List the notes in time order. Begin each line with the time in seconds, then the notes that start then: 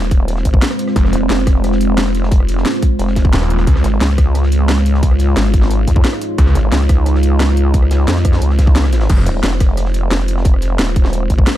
Already playing: D#1 G#3 C4 F4 C5
0.11 kick, closed hi-hat
0.28 closed hi-hat
0.36 snare
0.45 G#1, kick, closed hi-hat
0.54 kick
0.62 snare, closed hi-hat
0.71 cross-stick
0.79 closed hi-hat
0.87 cross-stick, snare
0.96 F1, kick, closed hi-hat
1.05 cross-stick, snare
1.12 D#1, snare, closed hi-hat
1.30 F1, snare, closed hi-hat
1.47 kick, cross-stick, snare, closed hi-hat
1.64 cross-stick, closed hi-hat
1.72 snare
1.81 closed hi-hat
1.98 snare, closed hi-hat
2.06 snare
2.15 closed hi-hat
2.23 snare
2.32 kick, closed hi-hat
2.40 cross-stick
2.49 closed hi-hat
2.58 snare
2.65 snare, closed hi-hat
2.82 kick, closed hi-hat
2.99 F1, closed hi-hat
3.08 snare
3.16 kick, snare, closed hi-hat
3.25 kick
3.33 D#1, snare, closed hi-hat
3.41 cross-stick, snare, closed hi-hat
3.50 closed hi-hat
3.58 cross-stick, snare, closed hi-hat
3.67 C#2 D#4 C#5, kick, closed hi-hat
3.76 cross-stick, snare
3.84 G#1, snare, closed hi-hat
4.01 C#2, snare, closed hi-hat
4.17 kick, cross-stick, snare, closed hi-hat
4.35 cross-stick, closed hi-hat
4.43 snare
4.52 closed hi-hat
4.69 snare, closed hi-hat
4.76 snare
4.86 closed hi-hat
4.94 snare
5.03 kick, closed hi-hat
5.11 cross-stick
5.19 snare, closed hi-hat
5.36 G#1, snare, closed hi-hat
5.54 kick, closed hi-hat
5.62 snare
5.71 closed hi-hat
5.88 F2, kick, closed hi-hat
5.96 kick
6.04 snare, closed hi-hat
6.13 cross-stick
6.21 closed hi-hat
6.38 C#2 C5, kick, closed hi-hat
6.46 cross-stick, snare
6.55 G#1, snare, closed hi-hat
6.72 C#2, snare, closed hi-hat
6.89 kick, cross-stick, snare, closed hi-hat
7.06 cross-stick, closed hi-hat
7.15 snare
7.23 closed hi-hat
7.40 snare, closed hi-hat
7.49 snare
7.57 closed hi-hat
7.74 kick, closed hi-hat
7.82 cross-stick
7.91 snare, closed hi-hat
8.08 F2, snare, closed hi-hat
8.16 snare, closed hi-hat
8.25 kick, cross-stick, closed hi-hat
8.33 snare, closed hi-hat
8.41 C#2, closed hi-hat
8.50 snare
8.59 kick, snare, closed hi-hat
8.67 kick
8.75 snare, closed hi-hat
8.84 cross-stick, snare, closed hi-hat
8.92 snare, closed hi-hat
9.00 cross-stick, snare, closed hi-hat
9.09 F1 G#3 C4 F4, kick, closed hi-hat, crash
9.18 cross-stick, snare
9.26 D#1, snare, closed hi-hat
9.43 F1, snare, closed hi-hat
9.60 kick, cross-stick, snare, closed hi-hat
9.77 cross-stick, closed hi-hat
9.85 snare
9.94 closed hi-hat
10.11 snare, closed hi-hat
10.20 snare
10.28 closed hi-hat
10.37 snare
10.44 kick, closed hi-hat
10.54 cross-stick
10.62 snare, closed hi-hat
10.79 D#1, snare, closed hi-hat
10.96 kick, closed hi-hat
11.04 snare
11.13 closed hi-hat
11.30 G#1, kick, closed hi-hat
11.38 kick
11.47 snare, closed hi-hat